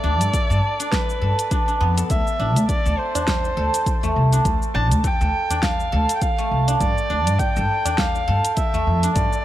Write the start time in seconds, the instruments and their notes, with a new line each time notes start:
Already playing: guzheng A3 A4, kamancheh D5
0.04 upright bass D2, guzheng D4
0.21 upright bass G2, closed hi-hat, cabasa
0.34 kick, closed hi-hat, cabasa
0.50 upright bass G2, guzheng A4, cabasa
0.80 guzheng D4, closed hi-hat, cabasa
0.92 kamancheh B4, kick, snare, closed hi-hat, cabasa
1.10 cabasa
1.21 upright bass G2, guzheng A4
1.39 closed hi-hat, cabasa
1.51 guzheng D4, kick, closed hi-hat, cabasa
1.68 guzheng D4, cabasa
1.80 upright bass F2, guzheng B3
1.97 guzheng A4, closed hi-hat, cabasa
2.10 upright bass D2, kamancheh E5, kick, closed hi-hat, cabasa
2.27 cabasa
2.39 upright bass A1, guzheng D4, tabla tin
2.56 upright bass D2, closed hi-hat, tabla na, cabasa
2.69 kamancheh D5, kick, closed hi-hat, cabasa
2.85 upright bass D2, guzheng A4, cabasa
2.98 kamancheh C5
3.15 guzheng D4, closed hi-hat, tabla na, tabla tin, tabla ge, cabasa
3.28 kick, snare, closed hi-hat, cabasa
3.44 tabla tin, cabasa
3.57 upright bass D2, guzheng A4
3.74 closed hi-hat, cabasa
3.86 kick, closed hi-hat, cabasa
4.03 guzheng A3, tabla ge, cabasa
4.16 upright bass C2
4.33 guzheng D4, closed hi-hat, cabasa
4.45 upright bass D2, kick, closed hi-hat, cabasa
4.62 cabasa
4.75 upright bass A1, guzheng D4, kamancheh A5, tabla tin
4.91 upright bass D2, closed hi-hat, tabla na, tabla ge, cabasa
5.04 kamancheh G5, kick, closed hi-hat, cabasa
5.21 upright bass D2, guzheng A4, cabasa
5.50 guzheng D4, closed hi-hat, tabla na, tabla tin, tabla ge, cabasa
5.63 kamancheh F5, kick, snare, closed hi-hat, cabasa
5.80 cabasa
5.92 upright bass D2, guzheng A4, tabla na
6.09 closed hi-hat, cabasa
6.16 kamancheh G5
6.22 kamancheh F5, kick, closed hi-hat, cabasa
6.38 guzheng A3, cabasa
6.51 upright bass C2
6.68 guzheng D4, closed hi-hat, tabla tin, cabasa
6.80 upright bass G2, kamancheh D5, kick, closed hi-hat, cabasa
6.98 cabasa
7.10 upright bass D2, guzheng D4, tabla tin
7.27 upright bass G2, closed hi-hat, tabla na, cabasa
7.39 kamancheh G5, kick, closed hi-hat, cabasa
7.56 upright bass G2, guzheng A4, cabasa
7.85 guzheng D4, closed hi-hat, tabla na, tabla tin, tabla ge, cabasa
7.98 kamancheh F5, kick, snare, closed hi-hat, cabasa
8.15 tabla tin, cabasa
8.28 upright bass G2, guzheng A4
8.45 closed hi-hat, cabasa
8.57 kamancheh E5, kick, closed hi-hat, cabasa
8.74 guzheng A3, tabla ge, cabasa
8.87 upright bass F2
9.03 guzheng D4, closed hi-hat, cabasa
9.15 upright bass G2, kamancheh D5, kick, closed hi-hat, cabasa
9.32 tabla na, cabasa